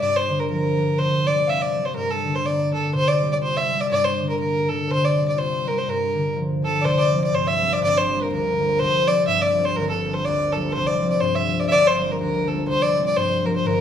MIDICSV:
0, 0, Header, 1, 3, 480
1, 0, Start_track
1, 0, Tempo, 487409
1, 1, Time_signature, 2, 2, 24, 8
1, 13598, End_track
2, 0, Start_track
2, 0, Title_t, "Fiddle"
2, 0, Program_c, 0, 110
2, 11, Note_on_c, 0, 74, 103
2, 156, Note_on_c, 0, 72, 88
2, 171, Note_off_c, 0, 74, 0
2, 389, Note_on_c, 0, 70, 68
2, 404, Note_off_c, 0, 72, 0
2, 486, Note_off_c, 0, 70, 0
2, 492, Note_on_c, 0, 70, 86
2, 971, Note_on_c, 0, 72, 102
2, 986, Note_off_c, 0, 70, 0
2, 1250, Note_on_c, 0, 74, 91
2, 1265, Note_off_c, 0, 72, 0
2, 1449, Note_on_c, 0, 77, 74
2, 1464, Note_off_c, 0, 74, 0
2, 1469, Note_on_c, 0, 76, 98
2, 1484, Note_off_c, 0, 77, 0
2, 1594, Note_on_c, 0, 74, 85
2, 1609, Note_off_c, 0, 76, 0
2, 1824, Note_on_c, 0, 72, 85
2, 1839, Note_off_c, 0, 74, 0
2, 1921, Note_off_c, 0, 72, 0
2, 1927, Note_on_c, 0, 70, 100
2, 2075, Note_on_c, 0, 69, 89
2, 2090, Note_off_c, 0, 70, 0
2, 2316, Note_on_c, 0, 72, 85
2, 2330, Note_off_c, 0, 69, 0
2, 2420, Note_on_c, 0, 74, 81
2, 2435, Note_off_c, 0, 72, 0
2, 2689, Note_off_c, 0, 74, 0
2, 2695, Note_on_c, 0, 69, 80
2, 2884, Note_off_c, 0, 69, 0
2, 2902, Note_on_c, 0, 72, 110
2, 3034, Note_on_c, 0, 74, 95
2, 3049, Note_off_c, 0, 72, 0
2, 3269, Note_off_c, 0, 74, 0
2, 3274, Note_on_c, 0, 74, 75
2, 3321, Note_off_c, 0, 74, 0
2, 3370, Note_on_c, 0, 72, 89
2, 3516, Note_on_c, 0, 76, 88
2, 3531, Note_off_c, 0, 72, 0
2, 3748, Note_on_c, 0, 74, 90
2, 3763, Note_off_c, 0, 76, 0
2, 3848, Note_off_c, 0, 74, 0
2, 3854, Note_on_c, 0, 74, 103
2, 3979, Note_on_c, 0, 72, 87
2, 3994, Note_off_c, 0, 74, 0
2, 4224, Note_off_c, 0, 72, 0
2, 4230, Note_on_c, 0, 70, 75
2, 4321, Note_off_c, 0, 70, 0
2, 4326, Note_on_c, 0, 70, 88
2, 4618, Note_on_c, 0, 69, 89
2, 4632, Note_off_c, 0, 70, 0
2, 4834, Note_on_c, 0, 72, 117
2, 4849, Note_off_c, 0, 69, 0
2, 4969, Note_on_c, 0, 74, 97
2, 4984, Note_off_c, 0, 72, 0
2, 5193, Note_off_c, 0, 74, 0
2, 5199, Note_on_c, 0, 74, 72
2, 5302, Note_on_c, 0, 72, 90
2, 5317, Note_off_c, 0, 74, 0
2, 5587, Note_on_c, 0, 70, 86
2, 5601, Note_off_c, 0, 72, 0
2, 5688, Note_on_c, 0, 72, 84
2, 5703, Note_off_c, 0, 70, 0
2, 5800, Note_on_c, 0, 70, 91
2, 5814, Note_off_c, 0, 72, 0
2, 6270, Note_off_c, 0, 70, 0
2, 6544, Note_on_c, 0, 69, 95
2, 6710, Note_on_c, 0, 74, 78
2, 6725, Note_off_c, 0, 69, 0
2, 6743, Note_on_c, 0, 72, 108
2, 6758, Note_off_c, 0, 74, 0
2, 6881, Note_on_c, 0, 74, 95
2, 6895, Note_off_c, 0, 72, 0
2, 7119, Note_off_c, 0, 74, 0
2, 7132, Note_on_c, 0, 74, 95
2, 7232, Note_on_c, 0, 72, 87
2, 7247, Note_off_c, 0, 74, 0
2, 7358, Note_on_c, 0, 76, 99
2, 7373, Note_off_c, 0, 72, 0
2, 7612, Note_on_c, 0, 74, 101
2, 7627, Note_off_c, 0, 76, 0
2, 7708, Note_off_c, 0, 74, 0
2, 7715, Note_on_c, 0, 74, 117
2, 7855, Note_on_c, 0, 72, 96
2, 7870, Note_off_c, 0, 74, 0
2, 8100, Note_on_c, 0, 70, 88
2, 8115, Note_off_c, 0, 72, 0
2, 8188, Note_off_c, 0, 70, 0
2, 8194, Note_on_c, 0, 70, 99
2, 8657, Note_on_c, 0, 72, 122
2, 8672, Note_off_c, 0, 70, 0
2, 8939, Note_on_c, 0, 74, 102
2, 8953, Note_off_c, 0, 72, 0
2, 9129, Note_off_c, 0, 74, 0
2, 9135, Note_on_c, 0, 76, 100
2, 9275, Note_on_c, 0, 74, 88
2, 9290, Note_off_c, 0, 76, 0
2, 9504, Note_on_c, 0, 72, 95
2, 9518, Note_off_c, 0, 74, 0
2, 9611, Note_on_c, 0, 70, 105
2, 9626, Note_off_c, 0, 72, 0
2, 9740, Note_off_c, 0, 70, 0
2, 9746, Note_on_c, 0, 69, 79
2, 9982, Note_on_c, 0, 72, 87
2, 9997, Note_off_c, 0, 69, 0
2, 10096, Note_on_c, 0, 74, 95
2, 10111, Note_off_c, 0, 72, 0
2, 10365, Note_on_c, 0, 69, 84
2, 10379, Note_off_c, 0, 74, 0
2, 10564, Note_on_c, 0, 72, 109
2, 10579, Note_off_c, 0, 69, 0
2, 10697, Note_on_c, 0, 74, 93
2, 10712, Note_off_c, 0, 72, 0
2, 10930, Note_off_c, 0, 74, 0
2, 10936, Note_on_c, 0, 74, 75
2, 11038, Note_on_c, 0, 72, 84
2, 11053, Note_off_c, 0, 74, 0
2, 11179, Note_on_c, 0, 76, 84
2, 11193, Note_off_c, 0, 72, 0
2, 11421, Note_on_c, 0, 74, 90
2, 11436, Note_off_c, 0, 76, 0
2, 11502, Note_off_c, 0, 74, 0
2, 11508, Note_on_c, 0, 76, 78
2, 11540, Note_on_c, 0, 74, 121
2, 11555, Note_off_c, 0, 76, 0
2, 11687, Note_on_c, 0, 72, 96
2, 11702, Note_off_c, 0, 74, 0
2, 11927, Note_on_c, 0, 70, 70
2, 11942, Note_off_c, 0, 72, 0
2, 12012, Note_off_c, 0, 70, 0
2, 12018, Note_on_c, 0, 70, 84
2, 12287, Note_on_c, 0, 69, 77
2, 12301, Note_off_c, 0, 70, 0
2, 12480, Note_off_c, 0, 69, 0
2, 12486, Note_on_c, 0, 72, 104
2, 12627, Note_on_c, 0, 74, 99
2, 12642, Note_off_c, 0, 72, 0
2, 12859, Note_off_c, 0, 74, 0
2, 12865, Note_on_c, 0, 74, 83
2, 12969, Note_on_c, 0, 72, 90
2, 12983, Note_off_c, 0, 74, 0
2, 13253, Note_on_c, 0, 70, 81
2, 13268, Note_off_c, 0, 72, 0
2, 13349, Note_off_c, 0, 70, 0
2, 13354, Note_on_c, 0, 72, 78
2, 13452, Note_on_c, 0, 70, 91
2, 13467, Note_off_c, 0, 72, 0
2, 13598, Note_off_c, 0, 70, 0
2, 13598, End_track
3, 0, Start_track
3, 0, Title_t, "Harp"
3, 0, Program_c, 1, 46
3, 0, Note_on_c, 1, 58, 45
3, 0, Note_on_c, 1, 65, 54
3, 16, Note_on_c, 1, 43, 57
3, 278, Note_on_c, 1, 50, 57
3, 493, Note_on_c, 1, 53, 50
3, 757, Note_off_c, 1, 50, 0
3, 768, Note_on_c, 1, 50, 47
3, 775, Note_off_c, 1, 53, 0
3, 970, Note_on_c, 1, 48, 62
3, 1016, Note_off_c, 1, 43, 0
3, 1016, Note_off_c, 1, 50, 0
3, 1250, Note_on_c, 1, 55, 54
3, 1457, Note_on_c, 1, 60, 49
3, 1722, Note_off_c, 1, 58, 0
3, 1726, Note_off_c, 1, 55, 0
3, 1738, Note_on_c, 1, 55, 52
3, 1935, Note_on_c, 1, 43, 62
3, 1981, Note_off_c, 1, 48, 0
3, 1981, Note_off_c, 1, 55, 0
3, 2019, Note_off_c, 1, 65, 0
3, 2208, Note_on_c, 1, 50, 50
3, 2408, Note_on_c, 1, 58, 54
3, 2666, Note_off_c, 1, 50, 0
3, 2678, Note_on_c, 1, 50, 51
3, 2886, Note_on_c, 1, 48, 70
3, 2944, Note_off_c, 1, 43, 0
3, 2944, Note_off_c, 1, 50, 0
3, 3169, Note_on_c, 1, 55, 56
3, 3366, Note_on_c, 1, 65, 49
3, 3638, Note_off_c, 1, 55, 0
3, 3650, Note_on_c, 1, 55, 49
3, 3855, Note_on_c, 1, 43, 64
3, 3907, Note_off_c, 1, 48, 0
3, 3907, Note_off_c, 1, 55, 0
3, 4131, Note_on_c, 1, 50, 49
3, 4340, Note_off_c, 1, 58, 0
3, 4344, Note_on_c, 1, 58, 51
3, 4412, Note_off_c, 1, 60, 0
3, 4602, Note_off_c, 1, 50, 0
3, 4614, Note_on_c, 1, 50, 50
3, 4800, Note_on_c, 1, 48, 56
3, 4869, Note_off_c, 1, 43, 0
3, 4869, Note_off_c, 1, 50, 0
3, 5088, Note_on_c, 1, 55, 50
3, 5278, Note_off_c, 1, 65, 0
3, 5282, Note_on_c, 1, 65, 58
3, 5552, Note_off_c, 1, 55, 0
3, 5564, Note_on_c, 1, 55, 50
3, 5781, Note_on_c, 1, 43, 66
3, 5830, Note_off_c, 1, 48, 0
3, 5830, Note_off_c, 1, 55, 0
3, 6053, Note_on_c, 1, 50, 60
3, 6262, Note_on_c, 1, 53, 53
3, 6510, Note_off_c, 1, 50, 0
3, 6522, Note_on_c, 1, 50, 54
3, 6550, Note_off_c, 1, 53, 0
3, 6732, Note_on_c, 1, 36, 62
3, 6739, Note_on_c, 1, 48, 61
3, 6790, Note_off_c, 1, 43, 0
3, 6790, Note_off_c, 1, 50, 0
3, 7003, Note_on_c, 1, 53, 50
3, 7007, Note_on_c, 1, 55, 43
3, 7013, Note_on_c, 1, 60, 56
3, 7213, Note_on_c, 1, 43, 61
3, 7270, Note_off_c, 1, 48, 0
3, 7479, Note_off_c, 1, 53, 0
3, 7480, Note_off_c, 1, 55, 0
3, 7488, Note_on_c, 1, 53, 40
3, 7493, Note_off_c, 1, 60, 0
3, 7495, Note_on_c, 1, 55, 42
3, 7497, Note_on_c, 1, 60, 45
3, 7511, Note_off_c, 1, 58, 0
3, 7688, Note_off_c, 1, 43, 0
3, 7696, Note_on_c, 1, 31, 59
3, 7701, Note_on_c, 1, 43, 64
3, 7750, Note_off_c, 1, 36, 0
3, 7750, Note_off_c, 1, 53, 0
3, 7750, Note_off_c, 1, 55, 0
3, 7767, Note_off_c, 1, 65, 0
3, 7966, Note_on_c, 1, 53, 52
3, 7971, Note_on_c, 1, 55, 52
3, 7982, Note_on_c, 1, 58, 56
3, 8182, Note_on_c, 1, 38, 63
3, 8229, Note_off_c, 1, 43, 0
3, 8444, Note_off_c, 1, 53, 0
3, 8452, Note_off_c, 1, 55, 0
3, 8456, Note_on_c, 1, 53, 47
3, 8460, Note_off_c, 1, 58, 0
3, 8462, Note_on_c, 1, 55, 44
3, 8464, Note_on_c, 1, 58, 54
3, 8662, Note_on_c, 1, 36, 57
3, 8665, Note_on_c, 1, 48, 72
3, 8708, Note_off_c, 1, 31, 0
3, 8708, Note_off_c, 1, 38, 0
3, 8708, Note_off_c, 1, 53, 0
3, 8708, Note_off_c, 1, 55, 0
3, 8926, Note_on_c, 1, 53, 53
3, 8935, Note_off_c, 1, 60, 0
3, 8936, Note_on_c, 1, 55, 43
3, 8939, Note_on_c, 1, 60, 61
3, 9131, Note_on_c, 1, 43, 57
3, 9187, Note_off_c, 1, 48, 0
3, 9378, Note_off_c, 1, 53, 0
3, 9382, Note_on_c, 1, 53, 55
3, 9401, Note_off_c, 1, 55, 0
3, 9413, Note_on_c, 1, 55, 41
3, 9438, Note_off_c, 1, 60, 0
3, 9442, Note_on_c, 1, 60, 54
3, 9616, Note_off_c, 1, 43, 0
3, 9627, Note_on_c, 1, 31, 62
3, 9631, Note_on_c, 1, 43, 66
3, 9666, Note_off_c, 1, 36, 0
3, 9666, Note_off_c, 1, 53, 0
3, 9666, Note_off_c, 1, 55, 0
3, 9899, Note_on_c, 1, 53, 54
3, 9904, Note_on_c, 1, 55, 40
3, 9905, Note_off_c, 1, 58, 0
3, 9909, Note_on_c, 1, 58, 56
3, 10115, Note_on_c, 1, 38, 64
3, 10145, Note_off_c, 1, 43, 0
3, 10375, Note_off_c, 1, 53, 0
3, 10378, Note_off_c, 1, 55, 0
3, 10384, Note_on_c, 1, 53, 49
3, 10389, Note_off_c, 1, 58, 0
3, 10392, Note_on_c, 1, 55, 45
3, 10393, Note_on_c, 1, 58, 51
3, 10590, Note_on_c, 1, 36, 64
3, 10595, Note_on_c, 1, 48, 66
3, 10624, Note_off_c, 1, 31, 0
3, 10624, Note_off_c, 1, 38, 0
3, 10624, Note_off_c, 1, 53, 0
3, 10624, Note_off_c, 1, 55, 0
3, 10849, Note_on_c, 1, 53, 52
3, 10855, Note_on_c, 1, 55, 47
3, 10856, Note_off_c, 1, 60, 0
3, 10860, Note_on_c, 1, 60, 55
3, 11038, Note_on_c, 1, 43, 66
3, 11102, Note_off_c, 1, 48, 0
3, 11289, Note_off_c, 1, 53, 0
3, 11298, Note_off_c, 1, 55, 0
3, 11301, Note_on_c, 1, 53, 47
3, 11307, Note_off_c, 1, 60, 0
3, 11307, Note_on_c, 1, 55, 44
3, 11311, Note_on_c, 1, 60, 59
3, 11517, Note_off_c, 1, 43, 0
3, 11528, Note_on_c, 1, 31, 61
3, 11531, Note_on_c, 1, 43, 60
3, 11581, Note_off_c, 1, 36, 0
3, 11581, Note_off_c, 1, 53, 0
3, 11581, Note_off_c, 1, 55, 0
3, 11796, Note_on_c, 1, 53, 49
3, 11811, Note_off_c, 1, 58, 0
3, 11811, Note_on_c, 1, 55, 41
3, 11815, Note_on_c, 1, 58, 59
3, 12022, Note_on_c, 1, 38, 63
3, 12059, Note_off_c, 1, 43, 0
3, 12265, Note_off_c, 1, 55, 0
3, 12266, Note_off_c, 1, 53, 0
3, 12274, Note_on_c, 1, 53, 52
3, 12280, Note_on_c, 1, 55, 46
3, 12288, Note_off_c, 1, 58, 0
3, 12292, Note_on_c, 1, 58, 55
3, 12473, Note_on_c, 1, 36, 55
3, 12477, Note_on_c, 1, 48, 69
3, 12537, Note_off_c, 1, 31, 0
3, 12537, Note_off_c, 1, 38, 0
3, 12537, Note_off_c, 1, 53, 0
3, 12537, Note_off_c, 1, 55, 0
3, 12765, Note_on_c, 1, 53, 50
3, 12768, Note_off_c, 1, 60, 0
3, 12770, Note_on_c, 1, 55, 48
3, 12772, Note_on_c, 1, 60, 63
3, 12968, Note_on_c, 1, 43, 61
3, 13016, Note_off_c, 1, 48, 0
3, 13228, Note_off_c, 1, 55, 0
3, 13230, Note_off_c, 1, 53, 0
3, 13240, Note_on_c, 1, 53, 50
3, 13242, Note_off_c, 1, 60, 0
3, 13243, Note_on_c, 1, 55, 47
3, 13246, Note_on_c, 1, 60, 54
3, 13431, Note_off_c, 1, 43, 0
3, 13436, Note_on_c, 1, 31, 65
3, 13446, Note_on_c, 1, 43, 69
3, 13494, Note_off_c, 1, 36, 0
3, 13494, Note_off_c, 1, 53, 0
3, 13494, Note_off_c, 1, 55, 0
3, 13598, Note_off_c, 1, 31, 0
3, 13598, Note_off_c, 1, 43, 0
3, 13598, Note_off_c, 1, 58, 0
3, 13598, Note_off_c, 1, 60, 0
3, 13598, End_track
0, 0, End_of_file